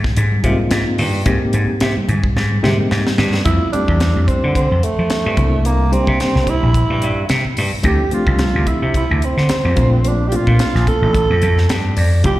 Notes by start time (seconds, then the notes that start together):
0.04 kick, snare
0.17 G#2, closed hi-hat
0.32 high conga
0.44 C3 G#3 A#3 C4 D#4 F4, kick, closed hi-hat, low conga
0.59 muted slap bass stroke
0.71 G#2, snare, closed hi-hat
0.98 G2, open hi-hat, low conga
1.26 G#2 G#3 A#3 C4 D#4 G4, kick, closed hi-hat
1.42 muted slap bass stroke
1.53 G#2, closed hi-hat
1.80 C3, snare, closed hi-hat
1.97 muted slap bass stroke, high conga
2.08 G#2, closed hi-hat, low conga
2.24 kick
2.36 G#2, snare
2.52 high conga
2.63 C3 G#3 A#3 C4 D#4 G4, snare, low conga
2.79 muted slap bass stroke
2.91 G#2, snare
3.07 snare, high conga
3.18 G2, snare, low conga
3.34 snare
3.45 F2 G3 A3 C4 E4 F4, kick, closed hi-hat
3.72 G3 A3 C4 D4 E4 G4, muted slap bass stroke, closed hi-hat
3.88 E2, kick
4.00 snare, closed hi-hat
4.16 F2
4.28 C4, kick, closed hi-hat
4.44 D3
4.55 C4, kick, closed hi-hat
4.71 F2
4.83 A3, closed hi-hat
4.99 F3
5.10 muted slap bass stroke, snare, closed hi-hat
5.26 G2
5.37 C2 G3 A#3 C4 D4 E4, kick, closed hi-hat
5.65 A#3, closed hi-hat
5.92 G3 A#3 C4 D4 G4, closed hi-hat
6.07 C3, kick
6.20 snare, closed hi-hat
6.35 C2, snare
6.47 E4, kick, closed hi-hat
6.63 A#1
6.74 kick, closed hi-hat
6.90 G2
7.02 G2, closed hi-hat
7.29 C3, snare, closed hi-hat
7.45 muted slap bass stroke
7.57 G2, open hi-hat
7.73 muted slap bass stroke
7.83 D2 F3 A3 C4 D4 E4 G4, kick, closed hi-hat
8.11 F3 A3 C4 D4 F4 G4, muted slap bass stroke, closed hi-hat
8.27 C2, kick
8.39 snare, closed hi-hat
8.55 D2
8.67 E4, kick, closed hi-hat
8.82 C3
8.94 E4, kick, closed hi-hat
9.11 D2
9.22 C4, closed hi-hat
9.37 D3, snare
9.49 muted slap bass stroke, snare, closed hi-hat
9.65 F2
9.76 A#1 A3 A#3 C4 D4 F4, kick, closed hi-hat
10.05 D4, closed hi-hat
10.28 A3 A#3 C4 D4 F4 G4, closed hi-hat
10.36 F4
10.47 A#2, kick
10.59 snare, closed hi-hat
10.75 A#1, snare
10.87 A4, kick, closed hi-hat
11.02 A1
11.14 kick, closed hi-hat
11.30 F2
11.42 F2, closed hi-hat
11.58 snare
11.69 G2 A5, snare, closed hi-hat
11.97 F2 D5, open hi-hat
12.24 F1 G3 A3 C4 E4 F4 G4, kick, closed hi-hat